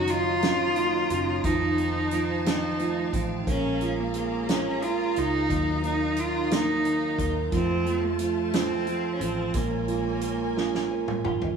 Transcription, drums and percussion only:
0.07 closed hi-hat medium
0.42 snare loud
0.42 closed hi-hat medium
0.76 closed hi-hat soft
1.10 closed hi-hat medium
1.44 kick medium
1.44 closed hi-hat medium
1.78 closed hi-hat soft
2.11 closed hi-hat medium
2.46 snare loud
2.46 closed hi-hat medium
2.79 closed hi-hat soft
3.13 kick medium
3.13 closed hi-hat medium
3.47 kick medium
3.47 closed hi-hat medium
3.81 closed hi-hat soft
4.14 closed hi-hat medium
4.49 snare loud
4.49 closed hi-hat medium
4.82 closed hi-hat soft
5.16 closed hi-hat medium
5.50 kick medium
5.50 closed hi-hat medium
5.84 closed hi-hat soft
6.16 closed hi-hat medium
6.51 snare loud
6.51 closed hi-hat medium
6.85 closed hi-hat medium
7.19 kick medium
7.19 closed hi-hat medium
7.52 kick medium
7.52 closed hi-hat medium
7.86 closed hi-hat soft
8.19 closed hi-hat medium
8.53 snare loud
8.53 closed hi-hat medium
8.87 closed hi-hat soft
9.21 closed hi-hat medium
9.54 kick medium
9.54 closed hi-hat medium
9.88 closed hi-hat soft
10.21 closed hi-hat medium
10.57 snare medium
10.75 snare medium
11.08 mid tom medium
11.25 mid tom medium
11.42 floor tom medium

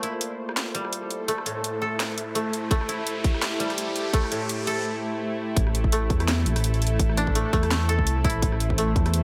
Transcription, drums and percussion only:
0.03 closed hi-hat medium
0.21 closed hi-hat medium
0.49 cross-stick medium
0.57 snare loud
0.57 closed hi-hat medium
0.75 closed hi-hat medium
0.85 cross-stick medium
0.93 closed hi-hat medium
1.11 closed hi-hat medium
1.28 closed hi-hat medium
1.38 cross-stick medium
1.46 closed hi-hat medium
1.64 closed hi-hat medium
2.00 snare loud
2.00 closed hi-hat medium
2.18 closed hi-hat medium
2.35 closed hi-hat medium
2.53 closed hi-hat medium
2.71 kick loud
2.71 closed hi-hat medium
2.81 cross-stick medium
2.89 closed hi-hat medium
3.07 closed hi-hat medium
3.24 kick loud
3.24 open hi-hat medium
3.34 cross-stick medium
3.42 snare loud
3.42 closed hi-hat medium
3.60 closed hi-hat medium
3.70 cross-stick soft
3.70 open hi-hat soft
3.78 closed hi-hat medium
3.96 closed hi-hat medium
4.13 kick loud
4.13 closed hi-hat medium
4.24 cross-stick medium
4.32 closed hi-hat medium
4.49 closed hi-hat medium
4.67 open hi-hat medium
5.56 kick loud
5.56 closed hi-hat medium
5.67 cross-stick medium
5.75 closed hi-hat medium
5.84 kick medium
5.92 closed hi-hat medium
6.10 kick loud
6.10 closed hi-hat soft
6.20 cross-stick medium
6.20 open hi-hat soft
6.28 snare loud
6.28 closed hi-hat medium
6.46 closed hi-hat medium
6.56 cross-stick medium
6.56 open hi-hat medium
6.64 closed hi-hat medium
6.74 open hi-hat soft
6.82 closed hi-hat medium
6.87 closed hi-hat medium
6.99 kick loud
6.99 closed hi-hat medium
7.09 cross-stick medium
7.17 closed hi-hat medium
7.27 kick medium
7.35 closed hi-hat medium
7.53 kick loud
7.53 open hi-hat soft
7.63 cross-stick medium
7.63 open hi-hat soft
7.71 snare loud
7.71 closed hi-hat medium
7.89 closed hi-hat medium
7.99 kick medium
8.07 closed hi-hat medium
8.24 kick loud
8.24 closed hi-hat medium
8.30 closed hi-hat medium
8.42 kick loud
8.42 closed hi-hat medium
8.52 cross-stick medium
8.60 closed hi-hat medium
8.70 kick medium
8.78 closed hi-hat medium
8.96 kick loud
8.96 closed hi-hat soft
9.06 cross-stick medium
9.06 open hi-hat soft
9.14 closed hi-hat medium

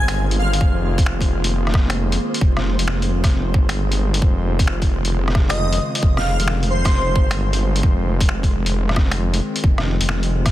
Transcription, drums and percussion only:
0.08 finger snap loud
0.08 closed hi-hat medium
0.31 closed hi-hat soft
0.53 closed hi-hat medium
0.61 kick loud
0.98 kick loud
0.98 closed hi-hat medium
1.06 finger snap loud
1.21 kick medium
1.21 closed hi-hat soft
1.44 closed hi-hat medium
1.67 cross-stick medium
1.74 kick loud
1.74 cross-stick medium
1.90 finger snap loud
1.90 closed hi-hat medium
2.12 closed hi-hat soft
2.34 closed hi-hat medium
2.41 kick loud
2.57 cross-stick medium
2.79 closed hi-hat medium
2.88 finger snap loud
2.88 cross-stick soft
3.02 closed hi-hat soft
3.24 kick loud
3.24 cross-stick medium
3.24 closed hi-hat medium
3.54 kick loud
3.69 finger snap loud
3.69 closed hi-hat medium
3.92 closed hi-hat soft
4.14 closed hi-hat medium
4.22 kick loud
4.59 kick loud
4.59 closed hi-hat medium
4.67 finger snap loud
4.82 kick medium
4.82 closed hi-hat soft
5.05 closed hi-hat medium
5.28 cross-stick medium
5.35 kick loud
5.35 cross-stick medium
5.50 finger snap loud
5.50 closed hi-hat medium
5.72 closed hi-hat soft
5.95 closed hi-hat medium
6.03 kick loud
6.17 cross-stick medium
6.40 closed hi-hat medium
6.48 finger snap loud
6.48 cross-stick soft
6.63 closed hi-hat soft
6.85 kick loud
6.85 cross-stick medium
6.85 closed hi-hat medium
7.16 kick loud
7.31 finger snap loud
7.31 closed hi-hat medium
7.53 closed hi-hat soft
7.76 closed hi-hat medium
7.83 kick loud
8.21 kick loud
8.21 closed hi-hat medium
8.29 finger snap loud
8.43 kick medium
8.43 closed hi-hat soft
8.66 closed hi-hat medium
8.89 cross-stick medium
8.96 kick loud
8.96 cross-stick medium
9.11 finger snap loud
9.11 closed hi-hat medium
9.34 closed hi-hat soft
9.56 closed hi-hat medium
9.64 kick loud
9.78 cross-stick medium
10.01 closed hi-hat medium
10.09 finger snap loud
10.09 cross-stick medium
10.23 closed hi-hat soft
10.46 kick loud
10.46 cross-stick medium
10.46 closed hi-hat medium

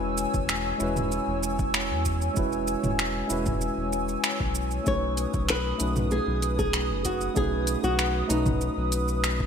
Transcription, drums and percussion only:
0.18 shaker medium
0.34 kick loud
0.34 shaker soft
0.49 finger snap loud
0.49 shaker soft
0.80 shaker medium
0.96 mid tom medium
0.96 shaker soft
1.12 shaker soft
1.43 shaker medium
1.59 kick loud
1.59 shaker soft
1.74 finger snap loud
1.74 shaker soft
2.05 kick medium
2.05 shaker medium
2.22 shaker soft
2.36 kick loud
2.36 shaker soft
2.52 shaker soft
2.67 shaker medium
2.84 mid tom medium
2.84 shaker soft
2.99 finger snap loud
2.99 shaker soft
3.30 shaker medium
3.46 kick loud
3.46 mid tom medium
3.46 shaker soft
3.61 shaker soft
3.93 shaker medium
4.09 shaker soft
4.24 finger snap loud
4.24 shaker soft
4.40 kick loud
4.55 shaker medium
4.71 shaker soft
4.86 kick loud
4.86 shaker soft
5.17 closed hi-hat medium
5.17 shaker medium
5.33 kick loud
5.33 shaker soft
5.49 finger snap medium
5.49 shaker soft
5.80 closed hi-hat medium
5.80 shaker medium
5.96 mid tom medium
5.96 shaker soft
6.11 shaker soft
6.42 closed hi-hat medium
6.42 shaker medium
6.59 kick medium
6.59 shaker soft
6.73 finger snap medium
6.73 shaker soft
7.05 kick medium
7.05 closed hi-hat medium
7.05 shaker medium
7.21 shaker soft
7.36 kick loud
7.36 shaker soft
7.67 closed hi-hat medium
7.67 shaker medium
7.84 shaker soft
7.99 finger snap medium
7.99 shaker soft
8.30 closed hi-hat medium
8.30 shaker medium
8.46 kick medium
8.46 mid tom medium
8.46 shaker soft
8.61 shaker soft
8.92 closed hi-hat medium
8.92 shaker medium
9.08 shaker soft
9.24 finger snap medium
9.24 shaker soft
9.40 kick medium

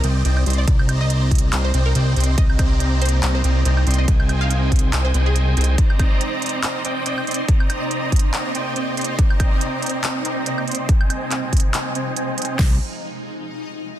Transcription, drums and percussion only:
0.04 closed hi-hat medium
0.25 closed hi-hat medium
0.37 high woodblock medium
0.46 closed hi-hat medium
0.50 closed hi-hat medium
0.53 closed hi-hat medium
0.68 kick loud
0.68 closed hi-hat medium
0.79 high woodblock medium
0.89 closed hi-hat medium
0.89 high woodblock medium
1.10 closed hi-hat medium
1.31 kick medium
1.31 closed hi-hat medium
1.35 closed hi-hat medium
1.38 closed hi-hat medium
1.53 clap loud
1.53 closed hi-hat medium
1.74 closed hi-hat medium
1.95 closed hi-hat medium
2.16 closed hi-hat medium
2.20 closed hi-hat medium
2.24 closed hi-hat medium
2.38 kick loud
2.38 closed hi-hat medium
2.50 high woodblock medium
2.59 kick loud
2.59 closed hi-hat medium
2.59 high woodblock medium
2.80 closed hi-hat medium
3.02 closed hi-hat medium
3.06 closed hi-hat medium
3.09 closed hi-hat medium
3.23 clap loud
3.23 closed hi-hat medium
3.44 closed hi-hat medium
3.65 closed hi-hat medium
3.77 high woodblock medium
3.87 closed hi-hat soft
3.91 closed hi-hat medium
3.94 closed hi-hat medium
4.08 kick loud
4.08 closed hi-hat medium
4.20 high woodblock medium
4.29 closed hi-hat medium
4.29 high woodblock medium
4.51 closed hi-hat medium
4.72 kick medium
4.72 closed hi-hat soft
4.76 closed hi-hat medium
4.79 closed hi-hat medium
4.93 clap loud
4.93 closed hi-hat medium
5.14 closed hi-hat medium
5.36 closed hi-hat medium
5.57 closed hi-hat soft
5.61 closed hi-hat medium
5.64 closed hi-hat medium
5.78 kick loud
5.78 closed hi-hat medium
5.90 high woodblock medium
5.99 kick loud
5.99 closed hi-hat medium
5.99 high woodblock medium
6.21 closed hi-hat medium
6.42 closed hi-hat soft
6.46 closed hi-hat medium
6.49 closed hi-hat medium
6.63 clap loud
6.63 closed hi-hat medium
6.85 closed hi-hat medium
7.06 closed hi-hat medium
7.18 high woodblock medium
7.27 closed hi-hat soft
7.31 closed hi-hat medium
7.34 closed hi-hat medium
7.48 kick loud
7.48 closed hi-hat medium
7.60 high woodblock medium
7.70 closed hi-hat medium
7.70 high woodblock medium
7.91 closed hi-hat medium
8.12 kick medium
8.12 closed hi-hat soft
8.16 closed hi-hat medium
8.19 closed hi-hat medium
8.34 clap loud
8.34 closed hi-hat medium
8.55 closed hi-hat medium
8.76 closed hi-hat medium
8.97 closed hi-hat soft
9.01 closed hi-hat medium
9.04 closed hi-hat medium
9.19 kick loud
9.19 closed hi-hat medium
9.30 high woodblock medium
9.40 kick loud
9.40 closed hi-hat medium
9.40 high woodblock medium
9.61 closed hi-hat medium
9.82 closed hi-hat soft
9.86 closed hi-hat medium
9.89 closed hi-hat medium
10.04 clap loud
10.04 closed hi-hat medium
10.25 closed hi-hat medium
10.46 closed hi-hat medium
10.58 high woodblock medium
10.68 closed hi-hat soft
10.71 closed hi-hat medium
10.75 closed hi-hat medium
10.89 kick loud
10.89 closed hi-hat medium
11.01 high woodblock medium
11.10 closed hi-hat medium
11.10 high woodblock medium
11.31 clap medium
11.31 closed hi-hat medium
11.53 kick medium
11.53 closed hi-hat medium
11.57 closed hi-hat medium
11.60 closed hi-hat medium
11.74 clap loud
11.74 closed hi-hat medium
11.95 closed hi-hat medium
12.17 closed hi-hat medium
12.38 closed hi-hat soft
12.42 closed hi-hat medium
12.45 closed hi-hat medium
12.59 kick loud
12.59 snare loud
12.59 crash medium

